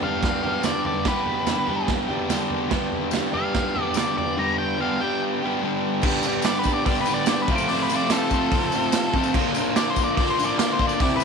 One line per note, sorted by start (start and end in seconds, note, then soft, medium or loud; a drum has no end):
0.00 0.62 G2 loud
0.00 0.44 D4 medium
0.00 0.42 G4 medium
0.00 0.63 F5 loud
0.00 floor tom medium
0.05 0.46 G3 soft
0.05 0.45 B3 medium
0.23 kick loud
0.23 snare loud
0.23 floor tom medium
0.43 0.64 G3 medium
0.43 0.65 B3 medium
0.43 0.66 D4 medium
0.43 0.66 G4 medium
0.43 floor tom medium
0.62 1.04 G2 medium
0.62 1.05 D3 medium
0.62 1.06 G3 medium
0.62 1.06 B3 medium
0.62 1.07 D4 medium
0.62 1.08 G4 medium
0.62 0.85 D5 medium
0.62 snare loud
0.62 floor tom medium
0.62 tambourine medium
0.85 1.06 D5 medium
0.85 floor tom medium
1.05 2.28 G2 medium
1.05 1.68 D3 medium
1.05 1.47 G3 medium
1.05 1.48 B3 medium
1.05 1.49 D4 medium
1.05 1.51 G4 loud
1.05 1.87 B4 loud
1.05 kick loud
1.05 snare loud
1.05 floor tom medium
1.26 floor tom medium
1.47 1.70 G3 medium
1.47 1.69 B3 medium
1.47 1.68 D4 medium
1.47 snare loud
1.47 floor tom medium
1.47 tambourine medium
1.51 1.66 G4 medium
1.66 2.10 B3 medium
1.66 2.09 D4 medium
1.66 2.07 G4 medium
1.66 floor tom medium
1.70 2.11 G3 medium
1.88 kick loud
1.88 snare loud
1.88 floor tom medium
2.08 2.29 G3 medium
2.08 2.30 B3 medium
2.08 2.31 D4 medium
2.08 2.31 G4 medium
2.08 floor tom medium
2.28 2.68 G2 medium
2.28 2.69 D3 medium
2.28 2.70 G3 medium
2.28 2.71 B3 medium
2.28 2.71 D4 medium
2.28 2.72 G4 loud
2.28 snare loud
2.28 floor tom medium
2.28 tambourine medium
2.50 floor tom medium
2.69 3.94 G2 medium
2.69 3.33 D3 medium
2.69 3.10 G3 medium
2.69 3.12 B3 loud
2.69 3.13 D4 medium
2.69 3.14 G4 medium
2.69 kick loud
2.69 snare loud
2.69 floor tom medium
2.92 floor tom medium
3.11 3.36 G3 medium
3.11 3.34 B3 medium
3.11 3.34 D4 medium
3.11 3.32 G4 medium
3.11 snare loud
3.11 floor tom medium
3.11 tambourine medium
3.32 3.77 B3 medium
3.32 3.75 D4 medium
3.32 3.75 G4 medium
3.32 3.83 F5 loud
3.32 floor tom medium
3.36 3.78 G3 medium
3.54 kick loud
3.54 snare loud
3.54 floor tom medium
3.75 3.96 G3 medium
3.75 3.96 B3 medium
3.75 3.97 D4 medium
3.75 3.98 G4 medium
3.75 floor tom medium
3.83 3.94 D5 loud
3.94 4.36 G2 medium
3.94 4.36 D3 medium
3.94 4.38 G3 loud
3.94 4.38 B3 loud
3.94 4.39 D4 medium
3.94 4.17 D5 medium
3.94 snare loud
3.94 floor tom medium
3.94 tambourine loud
3.99 4.40 G4 loud
4.18 4.38 D5 medium
4.18 floor tom medium
4.37 5.00 G2 medium
4.37 5.00 D3 loud
4.37 4.77 G3 medium
4.37 4.78 B3 medium
4.37 4.79 D4 loud
4.37 4.58 A#5 medium
4.41 4.81 G4 loud
4.58 4.79 G5 loud
4.79 5.03 G3 medium
4.79 5.01 B3 medium
4.79 5.00 D4 medium
4.79 4.99 G4 medium
4.79 5.00 F5 loud
5.00 5.44 G3 medium
5.00 5.43 B3 medium
5.00 5.42 D4 medium
5.00 5.41 G4 medium
5.00 5.21 G5 loud
5.42 5.62 G3 medium
5.42 5.62 B3 medium
5.42 5.63 D4 medium
5.42 5.63 G4 medium
5.62 6.01 G2 medium
5.62 6.02 D3 medium
5.62 6.03 G3 medium
5.62 6.03 B3 medium
5.62 6.03 D4 loud
5.62 6.04 G4 loud
6.01 6.22 G2 loud
6.01 6.23 D3 loud
6.01 6.23 G3 loud
6.01 6.24 B3 loud
6.01 6.24 D4 loud
6.01 6.26 G4 loud
6.01 kick loud
6.01 crash loud
6.01 tambourine soft
6.23 6.42 G2 medium
6.23 6.43 D3 medium
6.23 6.44 G3 medium
6.23 6.44 B3 loud
6.23 6.45 D4 medium
6.23 6.46 G4 loud
6.23 tambourine medium
6.33 tambourine soft
6.42 6.63 G2 medium
6.42 6.64 D3 medium
6.42 6.65 G3 loud
6.42 6.65 B3 medium
6.42 6.59 D5 loud
6.42 snare loud
6.42 open hi-hat medium
6.42 tambourine loud
6.46 6.66 D4 loud
6.46 6.66 G4 loud
6.59 6.72 B4 medium
6.63 6.84 G2 medium
6.63 6.85 D3 medium
6.63 6.84 G3 medium
6.63 6.85 B3 medium
6.63 6.86 D4 medium
6.63 6.86 G4 medium
6.63 kick medium
6.63 tambourine medium
6.74 6.85 D5 medium
6.85 7.04 G2 medium
6.85 7.05 D3 loud
6.85 7.05 G3 loud
6.85 7.06 B3 loud
6.85 7.07 D4 medium
6.85 7.08 G4 loud
6.85 6.99 D5 medium
6.85 kick loud
6.85 open hi-hat medium
6.95 tambourine soft
7.01 7.14 B4 medium
7.06 7.25 G2 medium
7.06 7.26 D3 medium
7.06 7.27 G3 medium
7.06 7.28 B3 medium
7.06 7.28 D4 medium
7.06 7.29 G4 medium
7.06 tambourine medium
7.14 7.27 D5 medium
7.14 tambourine soft
7.26 7.46 G2 loud
7.26 7.46 D3 loud
7.26 7.47 G3 medium
7.26 7.47 B3 loud
7.26 7.47 D4 loud
7.26 7.42 D5 medium
7.26 snare loud
7.26 open hi-hat medium
7.26 tambourine loud
7.30 7.48 G4 loud
7.37 tambourine soft
7.42 7.55 B4 medium
7.47 7.68 F2 medium
7.47 7.69 C3 loud
7.47 7.70 F3 loud
7.47 7.70 A3 loud
7.47 7.71 C4 loud
7.47 7.72 F4 loud
7.47 kick loud
7.47 tambourine soft
7.55 7.67 D5 loud
7.55 tambourine medium
7.68 7.89 F2 medium
7.68 7.90 C3 medium
7.68 7.92 F3 loud
7.68 7.91 A3 loud
7.68 7.92 C4 loud
7.68 7.93 F4 loud
7.68 7.82 D5 medium
7.68 open hi-hat medium
7.68 tambourine soft
7.82 7.96 B4 medium
7.89 8.10 F2 medium
7.89 8.10 C3 medium
7.89 8.12 F3 loud
7.89 8.11 A3 medium
7.89 8.12 C4 loud
7.89 tambourine medium
7.93 8.13 F4 medium
7.93 8.09 D5 medium
7.99 tambourine soft
8.10 8.30 F2 loud
8.10 8.31 C3 medium
8.10 8.32 F3 loud
8.10 8.32 A3 loud
8.10 8.33 C4 loud
8.10 9.31 A4 loud
8.10 snare loud
8.10 open hi-hat medium
8.10 tambourine loud
8.14 8.33 F4 loud
8.30 8.50 F2 medium
8.30 8.51 C3 medium
8.30 8.51 F3 medium
8.30 8.52 A3 medium
8.30 8.52 C4 medium
8.30 8.53 F4 medium
8.30 kick medium
8.30 tambourine medium
8.51 8.72 F2 medium
8.51 8.73 C3 medium
8.51 8.73 F3 loud
8.51 8.74 A3 loud
8.51 8.74 C4 loud
8.51 8.75 F4 loud
8.51 kick loud
8.51 open hi-hat medium
8.61 tambourine soft
8.72 8.91 F2 medium
8.72 8.92 C3 medium
8.72 8.93 F3 medium
8.72 8.93 A3 medium
8.72 8.93 C4 medium
8.72 tambourine medium
8.76 8.94 F4 loud
8.83 tambourine soft
8.92 9.12 F2 loud
8.92 9.13 C3 loud
8.92 9.13 F3 loud
8.92 9.14 A3 medium
8.92 9.15 C4 loud
8.92 9.15 F4 loud
8.92 snare loud
8.92 open hi-hat medium
8.92 tambourine loud
9.13 9.32 F2 medium
9.13 9.33 C3 medium
9.13 9.33 F3 medium
9.13 9.33 A3 medium
9.13 9.34 C4 medium
9.13 9.34 F4 loud
9.13 kick medium
9.13 tambourine soft
9.24 tambourine medium
9.34 9.53 A#2 loud
9.34 9.55 D3 loud
9.34 9.55 A#3 loud
9.34 9.56 D4 loud
9.34 9.56 F4 loud
9.34 kick loud
9.34 crash loud
9.55 9.76 A#2 medium
9.55 9.76 D3 medium
9.55 9.77 A#3 loud
9.55 9.77 D4 medium
9.55 9.78 F4 loud
9.55 tambourine medium
9.67 tambourine soft
9.76 9.96 A#2 medium
9.76 9.97 D3 loud
9.76 9.97 A#3 loud
9.76 9.98 D4 loud
9.76 9.99 F4 loud
9.76 9.90 D5 loud
9.76 snare loud
9.76 open hi-hat medium
9.76 tambourine loud
9.90 10.03 C5 medium
9.96 10.17 A#2 medium
9.96 10.18 D3 medium
9.96 10.18 A#3 medium
9.96 10.19 D4 medium
9.96 kick medium
9.96 tambourine medium
10.00 10.20 F4 loud
10.00 10.16 D5 loud
10.17 10.37 A#2 medium
10.17 10.38 D3 loud
10.17 10.39 A#3 loud
10.17 10.39 D4 loud
10.17 10.39 F4 loud
10.17 10.30 D5 medium
10.17 kick loud
10.17 open hi-hat medium
10.28 10.43 C5 medium
10.28 tambourine soft
10.38 10.58 A#2 medium
10.38 10.59 D3 medium
10.38 10.59 A#3 medium
10.38 10.59 D4 medium
10.38 10.60 F4 loud
10.38 tambourine medium
10.45 10.58 D5 loud
10.59 10.78 A#2 loud
10.59 10.78 D3 loud
10.59 10.79 A#3 loud
10.59 10.80 D4 loud
10.59 10.80 F4 loud
10.59 10.72 D5 medium
10.59 snare loud
10.59 open hi-hat medium
10.59 tambourine loud
10.72 10.85 C5 medium
10.79 10.98 A#2 medium
10.79 10.98 D3 medium
10.79 10.98 A#3 medium
10.79 10.99 D4 loud
10.79 10.99 F4 medium
10.79 kick medium
10.79 tambourine soft
10.87 10.99 D5 loud
10.87 tambourine medium
11.00 11.18 C3 loud
11.00 11.19 E3 loud
11.00 11.21 G3 loud
11.00 11.21 C4 loud
11.00 11.22 E4 loud
11.00 11.13 D5 medium
11.00 kick loud
11.00 open hi-hat medium
11.16 11.24 C3 medium
11.16 11.24 B4 medium
11.16 tambourine medium
11.21 11.24 E3 medium